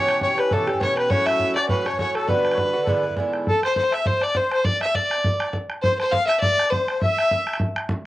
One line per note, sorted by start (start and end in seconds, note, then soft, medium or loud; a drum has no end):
0.00 0.38 B2 medium
0.00 0.38 E3 medium
0.00 0.38 C#4 loud
0.00 0.36 G4 loud
0.00 0.20 C#5 medium
0.00 0.22 C#5 loud
0.08 bodhran medium
0.21 0.38 C#5 medium
0.21 0.40 C#5 medium
0.21 bodhran medium
0.37 0.51 E3 soft
0.37 0.52 C#4 medium
0.37 0.51 G4 medium
0.37 0.51 B4 medium
0.37 0.54 B4 medium
0.37 bodhran medium
0.51 0.68 B2 medium
0.51 0.68 E3 loud
0.51 0.67 C#4 medium
0.51 0.66 G4 medium
0.51 0.79 A4 medium
0.51 0.81 A4 loud
0.51 bodhran medium
0.67 0.80 E3 soft
0.67 0.81 C#4 soft
0.67 0.80 G4 medium
0.67 bodhran medium
0.74 bodhran soft
0.80 1.09 B2 medium
0.80 1.10 E3 medium
0.80 1.10 C#4 medium
0.80 1.11 G4 medium
0.80 0.98 C#5 medium
0.80 0.96 C#5 loud
0.80 bodhran medium
0.97 1.11 B4 medium
0.97 bodhran medium
1.10 1.56 A2 loud
1.10 1.56 F#3 medium
1.10 1.56 C#4 loud
1.10 1.54 F#4 loud
1.10 1.27 C#5 loud
1.10 1.25 C#5 medium
1.10 bodhran loud
1.26 1.55 E5 loud
1.26 1.57 E5 medium
1.26 bodhran medium
1.39 bodhran medium
1.55 1.69 F#3 medium
1.55 1.70 C#4 medium
1.55 1.69 F#4 medium
1.55 1.68 D5 medium
1.55 bodhran medium
1.69 1.86 A2 medium
1.69 1.86 F#3 medium
1.69 1.86 C#4 loud
1.69 1.85 F#4 medium
1.69 1.87 B4 medium
1.69 1.86 B4 medium
1.69 bodhran medium
1.86 1.99 F#3 soft
1.86 2.00 C#4 medium
1.86 1.99 F#4 medium
1.86 1.98 C#5 loud
1.86 1.98 C#5 medium
1.86 bodhran medium
1.93 bodhran soft
1.99 2.27 A2 medium
1.99 2.28 F#3 medium
1.99 2.29 C#4 medium
1.99 2.29 F#4 medium
1.99 2.16 C#5 medium
1.99 2.15 C#5 medium
1.99 bodhran medium
2.14 2.29 A4 medium
2.14 bodhran medium
2.27 2.74 G2 medium
2.27 2.75 D3 medium
2.27 2.74 B3 loud
2.27 2.72 F#4 medium
2.27 3.17 B4 loud
2.27 2.53 B4 medium
2.27 bodhran medium
2.45 bodhran medium
2.52 2.58 C#5 soft
2.52 bodhran medium
2.57 2.82 B4 medium
2.57 bodhran medium
2.73 2.87 D3 medium
2.73 2.88 B3 medium
2.73 2.87 F#4 medium
2.84 3.04 G#2 medium
2.84 3.04 D3 loud
2.84 2.88 A4 medium
2.84 3.15 B4 medium
2.84 bodhran medium
2.89 3.04 B3 loud
2.89 3.02 E4 loud
3.03 3.17 D3 soft
3.03 3.18 B3 medium
3.03 3.17 E4 medium
3.10 bodhran soft
3.17 3.47 G#2 medium
3.17 3.47 D3 medium
3.17 3.48 B3 medium
3.17 3.48 E4 medium
3.17 bodhran medium
3.34 bodhran medium
3.47 3.62 A4 medium
3.47 3.63 A4 loud
3.47 bodhran medium
3.63 3.74 C5 medium
3.63 3.76 C5 loud
3.63 bodhran medium
3.76 3.93 C5 loud
3.76 3.95 C5 medium
3.76 bodhran medium
3.92 4.05 E5 medium
3.92 4.08 E5 medium
3.92 bodhran medium
4.05 4.22 C5 medium
4.05 4.25 C5 loud
4.05 bodhran medium
4.14 bodhran soft
4.21 4.35 D5 medium
4.21 4.38 D5 loud
4.21 bodhran medium
4.35 4.63 C5 loud
4.35 4.52 C5 medium
4.35 bodhran medium
4.52 4.66 C5 loud
4.52 bodhran medium
4.65 4.81 D5 loud
4.65 4.80 D5 medium
4.65 bodhran medium
4.81 4.94 E5 medium
4.81 4.97 E5 loud
4.81 bodhran medium
4.94 5.50 D5 medium
4.94 5.54 D5 loud
4.94 bodhran medium
5.11 bodhran medium
5.24 bodhran loud
5.40 bodhran medium
5.53 bodhran medium
5.70 bodhran medium
5.82 5.98 C5 loud
5.82 5.98 C5 medium
5.82 bodhran medium
5.99 6.13 C5 loud
5.99 6.13 C5 medium
5.99 bodhran medium
6.12 6.26 F5 loud
6.12 6.28 F5 loud
6.12 bodhran loud
6.27 6.40 E5 loud
6.27 6.41 E5 medium
6.27 bodhran medium
6.40 6.72 D5 loud
6.40 6.73 D5 medium
6.40 bodhran medium
6.51 bodhran soft
6.59 bodhran medium
6.70 7.01 C5 medium
6.70 7.02 C5 medium
6.70 bodhran medium
6.88 bodhran medium
7.01 7.56 E5 loud
7.01 7.57 E5 medium
7.01 bodhran medium
7.18 bodhran medium
7.31 bodhran medium
7.47 bodhran medium
7.54 bodhran medium
7.60 bodhran medium
7.69 bodhran soft
7.76 bodhran medium
7.89 bodhran loud